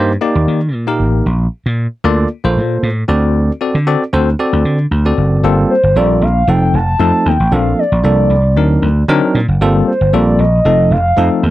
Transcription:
Already playing: G2 A#3 D#4 G4 C5
0.21 A#3 D#4 G4 D5
0.35 D#2
0.48 D#3
0.74 A#2
0.87 A#3 D#4 G4 A#4
1.00 A1
1.26 A#1
1.66 A#2
2.04 D2 A#3 F4 A4 D5
2.44 A#1 A#3 F4 A4 C5
2.56 A#2
2.83 A2
3.08 D2 C4 F#4 A4 D5
3.61 C4 F#4 A4 D5
3.75 D3
3.87 C4 F#4 A4 D5
4.13 D2 C4 F#4 A4 C5
4.39 C4 F#4 A4 D5
4.53 D2
4.65 D3
4.91 D2
5.05 C4 F#4 A4 D5
5.18 F#1
5.43 G1 G3 A#3 C4 F4 A4
5.70 C5
5.83 G1
5.96 A#1 G3 A#3 C4 F4 A4 D5
6.21 A#1 F5
6.47 F1 F3 A3 C4 D#4 A4 G5
6.74 F1 A5
6.99 F2 F3 A3 C4 D#4 A4
7.26 D#2 G5
7.40 A1
7.52 A#1 F3 A#3 C4 D4 A4 F5
7.79 D5
7.92 A#1
8.04 C2 F3 A#3 C4 D4 A4 D5
8.30 C2
8.56 D2 F#3 C4 D4 D#4 A#4
8.82 D2
9.08 D3 F#3 C4 D4 D#4 A#4
9.35 A#2
9.48 F#1
9.61 G1 G3 A#3 C4 F4 A4
9.87 C5
10.01 G1
10.13 A#1 G3 A#3 C4 F4 A4 D5
10.39 A#1 D#5
10.65 F1 F3 A3 C4 D#4 A4
10.91 F1 F5
11.17 F2 F3 A3 C4 D#4 A4
11.43 D#2

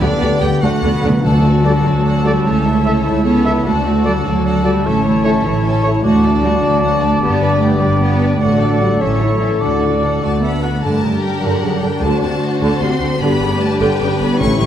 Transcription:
Already playing: D3 D4 G4 B4
0.00 D2 D3 G3 B3 D4 G4 D5
0.19 D2 D3 G3 B3 G4
0.40 D2 D3 G3 B3 G4 G5
0.46 D3
0.50 D4
0.54 A4
0.59 D2 D3 A3 F#4 D5 F#5
0.63 A3 D4 A4
0.70 D3
0.78 D3
0.83 D2 D3 A3 B3 D4
0.93 D3
1.02 D2 D3 A3 D4
1.10 D3
1.17 D3
1.24 D2 D3 A3 D4 F#4 A4 F#5 A5
1.46 F#4 D5
1.64 G3 D4 F#4 A4 D5 F#5
1.84 D2 F#3 F#4 D5
2.05 D4 A4 D5 F#5
2.24 G3 F#4 A4 D5
2.44 C#2 C#3 A3 C#4 E4 A4 C#5
2.65 A3 C#4 E4 C#5 E5
2.84 C#4 E4 A4 C#5 E5
3.05 C#2 A3 E4 A4 C#5 E5
3.24 B3 C#4 A4 C#5 E5
3.44 E4 A4 C#5 E5
3.65 D2 D3 A3 D4 F#4 A4 F#5 A5
3.85 A3 F#4 D5
4.05 G3 D4 F#4 A4 D5 F#5
4.24 D2 F#3 F#4 D5
4.45 D4 A4 D5 F#5
4.64 G3 F#4 A4 D5
4.84 A1 A2 A3 C#4 E4 A4 C#5 E5
5.04 E3 A3 E4 C#5
5.24 C#4 E4 A4 C#5 E5
5.44 A1 E3 E4 A4 C#5
5.64 C#4 A4 C#5 E5
5.83 E4 A4 C#5
6.03 D2 D3 A3 D4 F#4 D5 F#5 A5
6.23 D4 A4 D5
6.43 G3 A3 D4 F#4 F#5
6.63 D2 F#3 D4 F#4 A4 D5
6.82 A3 F#4 F#5
7.01 A3 D4 F#4 A4 D5
7.21 G1 G2 B3 G4 B4
7.42 D3 D4 B4 D5
7.62 A3 B3 D4 G4 B4
7.81 G1 G3 D4 G4 B4 D5 G5
8.00 B3 G4 B4
8.19 D4 B4 D5
8.39 A1 A2 A3 D4 F#4 A4 D5 F#5
8.59 D4 A4 D5
8.80 G3 A3 F#4 F#5
8.99 A1 A2 F#3 C#4 E4 A4 C#5 E5
9.20 C#4 E4 C#5
9.41 E3 C#4 E4 A4 E5
9.60 D2 D3 D4 F#4 A4 D5 F#5
9.81 A3 F#4 D5
10.01 D4 A4 F#5
10.20 D2 A3 F#4 D5 A5
10.42 B3 D4 A4 E5 F#5 B5
10.62 F#4 D5 F#5
10.83 G2 D3 A3 D4 G4 A#4 A5
11.02 G2 C#3 D4
11.22 G3 C#4 G5
11.42 G2 D3 F#3 D4 A#4 F#5
11.62 G2 C#3 D3
11.81 G2 D3 G3 D4 G5
12.01 D2 D3 A3 F#4 C5 A5
12.22 D2 C3 A3 D4 A5
12.43 C4
12.61 D2 D3 A3 A5
12.81 D2 C3 A3 C4 C6
13.01 D2 D3 D4
13.20 G1 G2 D3 B3 D4 G4 B4 B5
13.41 G1 C#3 D4
13.61 A3 C#4 A5
13.79 G1 D3 G3 D4 G5
14.01 G1 C#3 D3
14.19 G1 D3 B3 D4 B5
14.40 A1 A2 A3 C#4 E4 C#6
14.60 A1 G3 A3 C#4 C#6

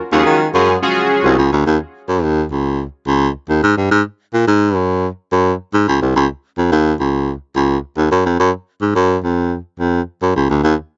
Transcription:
0.12 D#2 C#4 F4 F#4 G#4
0.26 D#3
0.54 F#2 C#4 F4 F#4 G#4
0.82 C#4 F4 F#4 G#4
1.25 C2
1.38 C#2
1.53 D2
1.67 D#2
2.09 F#2
2.23 D#2
2.51 C#2
3.07 C#2
3.49 D#2
3.63 G#2
3.77 G2
3.91 G#2
4.34 A#2
4.48 G#2
4.75 F#2
5.32 F#2
5.74 G#2
5.88 C#2
6.02 C2
6.16 C#2
6.58 F2
6.72 D#2
7.00 C#2
7.56 C#2
7.98 D#2
8.12 F#2
8.26 F2
8.40 F#2
8.82 G#2
8.96 F#2
9.24 F2
9.80 F2
10.22 F#2
10.36 C#2
10.50 D2
10.64 D#2

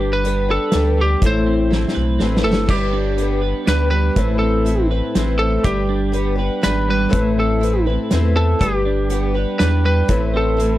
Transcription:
Already playing: G1 G3 D4 G4 B4
0.01 D4
0.13 B4
0.24 G3 B3 D4 G4 B4, closed hi-hat
0.49 D4 G4 A4 B4
0.72 D2 G3 D4 G4, snare, closed hi-hat
0.76 B4
0.98 G3 G4 B4
1.02 D4
1.22 A1 A2 E3 A3 C4 E4, kick, closed hi-hat
1.26 C5
1.46 C4
1.70 A3 C4 E4, snare
1.88 snare
1.94 B1 B4
2.20 A1 A3 C4 E4 B4, snare
2.37 snare
2.43 G1 A3 E4 A4 B4
2.47 A3 C4
2.53 snare
2.67 G1 G3 D4 G4 B4, kick, crash
2.93 D4
3.18 G3 B3 D4 G4, closed hi-hat
3.22 B4
3.42 B4
3.67 D2 G3 D4 G4 B4, snare, closed hi-hat
3.91 G3 B4
3.95 D4 G4
4.16 A1 A2 E3 A3 C4 E4 B4, kick, closed hi-hat
4.39 C4 A4
4.65 A3 C4 E4 B4, closed hi-hat
4.91 A3 C4 E4 B4
5.15 A1 A3 C4 E4 B4, snare, closed hi-hat
5.39 A3 C4 E4 A4 B4
5.64 G1 G3 D4 G4 B4, kick, closed hi-hat
5.89 D4
6.12 G3 B3 D4 G4 B4, closed hi-hat
6.36 G4 B4
6.40 D4
6.62 G#1 G3 D4 G4 B4, snare, closed hi-hat
6.88 G3 B4
7.09 A2 E3 A3 C4 E4 B4, kick, closed hi-hat
7.13 A1
7.38 C4 A4
7.60 A3 C4 E4 B4, closed hi-hat
7.86 A3 C4 E4 B4
8.10 E2 A3 C4 E4 B4, snare, closed hi-hat
8.36 A3 A4
8.59 G1 G3 D4 G4 B4, kick, closed hi-hat
8.85 D4
9.09 G3 B3 D4 G4, closed hi-hat
9.14 B4
9.34 D4 G4 B4
9.59 E2 G3 D4 G4 B4, snare, closed hi-hat
9.84 G3 B4
10.08 A1 A2 E3 A3 C4 E4 B4, kick, closed hi-hat
10.34 C4 A4
10.57 A3 C4 E4 B4, closed hi-hat

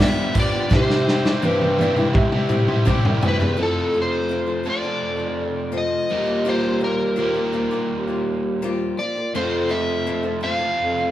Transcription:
Already playing: G2 D3 F3 G3 B3 F4 G4 B5
0.00 G3 F4 G4 E5, snare
0.34 F3 G3 B3 F4 G4, kick, open hi-hat
0.40 D5
0.54 F3 G3 B3 F4 G4
0.70 C3 E3 G3 C4 E4 G4 E5 G5, kick, snare
0.76 C5
0.89 G3 E4 G4, snare
1.07 E3 G3 E4 G4, snare
1.24 C4 E4 G4, snare
1.29 G3
1.42 G2 C3 E3 G3 C4 E4 G4, high tom
1.62 high tom
1.79 E3 G3 C4 E4 G4 D5, high tom
1.96 G3 C4 E4 G4, mid tom
2.08 B4
2.14 C3 E5, kick, mid tom
2.32 G3 E4 G4, mid tom
2.49 G3 C4 E4 G4, mid tom
2.68 G3 E4 G4, mid tom
2.85 C3 E3 G3 C4 E4 G4, kick, mid tom
3.05 C2, floor tom
3.21 D2 E3 G3 C4 E4 G4, floor tom
3.28 B4
3.40 E2 G3 C4 E4 G4, floor tom
3.57 F2 F3 A3 C4 F4 A4
3.63 A4
3.94 F3 C4 F4 A4
4.02 C5
4.29 F3 C4 F4 A4
4.46 C4 F4 A4
4.63 F3 C4 F4 A4
4.68 F3 A3 D5
4.83 C4 F4 A4
5.02 F2
5.17 C4 F4 A4
5.72 F3 C4 F4 A4
5.78 D#5
6.09 D#2 D#3 F3 G3 A#3 F4 G4
6.14 A#4
6.26 A#3 F4 G4
6.45 D#3 F3 A#3 F4 G4
6.49 C5
6.80 F3 A#3 F4 G4
6.84 A#4
7.16 D#3 F3 A#3 F4 G4
7.20 G3 G4 A#4
7.34 A#3 F4 G4
7.53 F3 A#3 F4 G4
7.71 A#3 F4 G4
7.92 D#2
8.07 A#3 F4 G4
8.62 D#3 F3 A#3 F4 G4
8.98 F3 A#3 F4 G4 D5
9.15 A#3 F4 G4
9.34 F2 F3 A3 C4 F4 A4 C5
9.69 A3 C4 F4 A4 E5
10.06 F3 A3 C4 F4 A4
10.23 C4 F4 A4
10.41 A3 C4 F4 A4 F5
10.45 F3 A3
10.59 C4 F4 A4
10.79 F2
10.98 C4 F4 A4

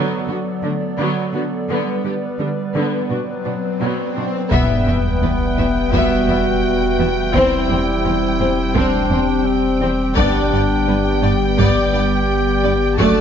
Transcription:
Already playing: F#3 B3 A4 D5
0.28 D3 B3 F#4
0.63 D3 A3 D4
0.98 D3 F#3 B3
1.34 D3 B3 F#4
1.69 D3 G3 B3 B4, swell
2.04 D3 B3 G4
2.39 D3 G3 D4
2.75 D3 B3
3.10 B2 F#3 D4 F#4
3.45 B2 B3 D4
3.80 B2 F#3 B3
4.16 B2 D4 F#4
4.51 E1 E2 G3 B3 B4 E5 G5, taiko, sub drop
4.87 E2 B3 E5
5.22 E2 B3 B4
5.58 E2 B3 E5
5.92 E2 B3 F#4 E5, taiko
6.28 E2 B3 E5
6.98 E2 B3 E5
7.34 E2 C4 E4 G4 C5, taiko
7.70 E2 C4 C5
8.05 E2 C4 G4
8.40 E2 C4 C5
8.75 E2 C4 D4 C5, taiko
9.10 E2 C4 C5
9.46 C4
9.81 E2 C4 C5
10.16 G1 G2 G3 B3 D4 G4 D5 G5, taiko
10.52 G2 B3 D5
10.87 G2 B3 B4
11.22 G2 B3 D5
11.57 G2 B3 G4 D5, taiko
11.93 G2 B3 D5
12.63 G2 B3 D5
12.98 F#1 F#2 F#3 A3 D4 F#4 A4 D5 A5, taiko

